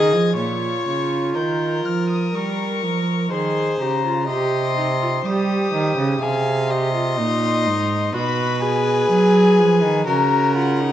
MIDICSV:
0, 0, Header, 1, 5, 480
1, 0, Start_track
1, 0, Key_signature, -5, "minor"
1, 0, Tempo, 980392
1, 183, Time_signature, 4, 2, 24, 8
1, 2102, Tempo, 964630
1, 5401, End_track
2, 0, Start_track
2, 0, Title_t, "Violin"
2, 0, Program_c, 0, 40
2, 0, Note_on_c, 0, 92, 90
2, 180, Note_off_c, 0, 92, 0
2, 183, Note_on_c, 0, 85, 74
2, 647, Note_off_c, 0, 85, 0
2, 668, Note_on_c, 0, 91, 65
2, 906, Note_on_c, 0, 89, 63
2, 913, Note_off_c, 0, 91, 0
2, 1023, Note_off_c, 0, 89, 0
2, 1026, Note_on_c, 0, 87, 57
2, 1149, Note_on_c, 0, 85, 74
2, 1156, Note_off_c, 0, 87, 0
2, 1624, Note_off_c, 0, 85, 0
2, 1627, Note_on_c, 0, 84, 70
2, 1860, Note_off_c, 0, 84, 0
2, 1865, Note_on_c, 0, 82, 66
2, 2097, Note_off_c, 0, 82, 0
2, 2101, Note_on_c, 0, 84, 73
2, 2578, Note_on_c, 0, 87, 75
2, 2585, Note_off_c, 0, 84, 0
2, 3062, Note_on_c, 0, 80, 70
2, 3070, Note_off_c, 0, 87, 0
2, 3297, Note_off_c, 0, 80, 0
2, 3300, Note_on_c, 0, 84, 81
2, 4005, Note_off_c, 0, 84, 0
2, 4022, Note_on_c, 0, 83, 90
2, 4255, Note_off_c, 0, 83, 0
2, 4258, Note_on_c, 0, 80, 93
2, 4964, Note_off_c, 0, 80, 0
2, 4975, Note_on_c, 0, 82, 85
2, 5213, Note_off_c, 0, 82, 0
2, 5218, Note_on_c, 0, 78, 78
2, 5401, Note_off_c, 0, 78, 0
2, 5401, End_track
3, 0, Start_track
3, 0, Title_t, "Violin"
3, 0, Program_c, 1, 40
3, 0, Note_on_c, 1, 75, 87
3, 169, Note_off_c, 1, 75, 0
3, 178, Note_on_c, 1, 73, 73
3, 660, Note_on_c, 1, 70, 66
3, 667, Note_off_c, 1, 73, 0
3, 1620, Note_on_c, 1, 72, 67
3, 1627, Note_off_c, 1, 70, 0
3, 2091, Note_off_c, 1, 72, 0
3, 2094, Note_on_c, 1, 75, 76
3, 2569, Note_off_c, 1, 75, 0
3, 2578, Note_on_c, 1, 72, 62
3, 3048, Note_off_c, 1, 72, 0
3, 3057, Note_on_c, 1, 77, 72
3, 3302, Note_on_c, 1, 75, 85
3, 3309, Note_off_c, 1, 77, 0
3, 4018, Note_off_c, 1, 75, 0
3, 4021, Note_on_c, 1, 71, 100
3, 4960, Note_off_c, 1, 71, 0
3, 4974, Note_on_c, 1, 70, 79
3, 5401, Note_off_c, 1, 70, 0
3, 5401, End_track
4, 0, Start_track
4, 0, Title_t, "Viola"
4, 0, Program_c, 2, 41
4, 0, Note_on_c, 2, 68, 94
4, 182, Note_off_c, 2, 68, 0
4, 186, Note_on_c, 2, 65, 66
4, 1128, Note_off_c, 2, 65, 0
4, 1148, Note_on_c, 2, 70, 61
4, 1616, Note_off_c, 2, 70, 0
4, 1626, Note_on_c, 2, 68, 69
4, 1867, Note_on_c, 2, 67, 61
4, 1874, Note_off_c, 2, 68, 0
4, 1981, Note_off_c, 2, 67, 0
4, 1984, Note_on_c, 2, 65, 56
4, 2097, Note_off_c, 2, 65, 0
4, 2100, Note_on_c, 2, 67, 69
4, 2336, Note_off_c, 2, 67, 0
4, 2342, Note_on_c, 2, 63, 54
4, 2382, Note_off_c, 2, 63, 0
4, 2462, Note_on_c, 2, 65, 60
4, 2502, Note_off_c, 2, 65, 0
4, 2583, Note_on_c, 2, 67, 73
4, 3062, Note_on_c, 2, 68, 66
4, 3069, Note_off_c, 2, 67, 0
4, 3301, Note_on_c, 2, 67, 75
4, 3308, Note_off_c, 2, 68, 0
4, 3417, Note_off_c, 2, 67, 0
4, 3420, Note_on_c, 2, 65, 67
4, 3542, Note_on_c, 2, 63, 83
4, 3549, Note_off_c, 2, 65, 0
4, 4017, Note_on_c, 2, 66, 80
4, 4025, Note_off_c, 2, 63, 0
4, 4253, Note_on_c, 2, 68, 85
4, 4261, Note_off_c, 2, 66, 0
4, 4974, Note_off_c, 2, 68, 0
4, 4977, Note_on_c, 2, 66, 66
4, 5216, Note_on_c, 2, 65, 72
4, 5224, Note_off_c, 2, 66, 0
4, 5341, Note_on_c, 2, 63, 64
4, 5349, Note_off_c, 2, 65, 0
4, 5401, Note_off_c, 2, 63, 0
4, 5401, End_track
5, 0, Start_track
5, 0, Title_t, "Cello"
5, 0, Program_c, 3, 42
5, 0, Note_on_c, 3, 51, 76
5, 63, Note_on_c, 3, 53, 68
5, 70, Note_off_c, 3, 51, 0
5, 181, Note_off_c, 3, 53, 0
5, 184, Note_on_c, 3, 46, 58
5, 409, Note_off_c, 3, 46, 0
5, 427, Note_on_c, 3, 49, 54
5, 667, Note_on_c, 3, 51, 58
5, 675, Note_off_c, 3, 49, 0
5, 907, Note_off_c, 3, 51, 0
5, 909, Note_on_c, 3, 53, 57
5, 1142, Note_off_c, 3, 53, 0
5, 1147, Note_on_c, 3, 55, 60
5, 1386, Note_on_c, 3, 53, 55
5, 1393, Note_off_c, 3, 55, 0
5, 1621, Note_off_c, 3, 53, 0
5, 1624, Note_on_c, 3, 51, 57
5, 1858, Note_off_c, 3, 51, 0
5, 1862, Note_on_c, 3, 49, 60
5, 2100, Note_on_c, 3, 48, 76
5, 2108, Note_off_c, 3, 49, 0
5, 2579, Note_off_c, 3, 48, 0
5, 2582, Note_on_c, 3, 55, 75
5, 2817, Note_off_c, 3, 55, 0
5, 2823, Note_on_c, 3, 51, 76
5, 2937, Note_off_c, 3, 51, 0
5, 2940, Note_on_c, 3, 49, 77
5, 3055, Note_off_c, 3, 49, 0
5, 3058, Note_on_c, 3, 48, 84
5, 3541, Note_on_c, 3, 46, 74
5, 3549, Note_off_c, 3, 48, 0
5, 3780, Note_on_c, 3, 44, 77
5, 3787, Note_off_c, 3, 46, 0
5, 4018, Note_off_c, 3, 44, 0
5, 4021, Note_on_c, 3, 47, 87
5, 4489, Note_off_c, 3, 47, 0
5, 4500, Note_on_c, 3, 54, 83
5, 4738, Note_on_c, 3, 53, 77
5, 4745, Note_off_c, 3, 54, 0
5, 4858, Note_on_c, 3, 51, 75
5, 4866, Note_off_c, 3, 53, 0
5, 4978, Note_off_c, 3, 51, 0
5, 4981, Note_on_c, 3, 49, 85
5, 5401, Note_off_c, 3, 49, 0
5, 5401, End_track
0, 0, End_of_file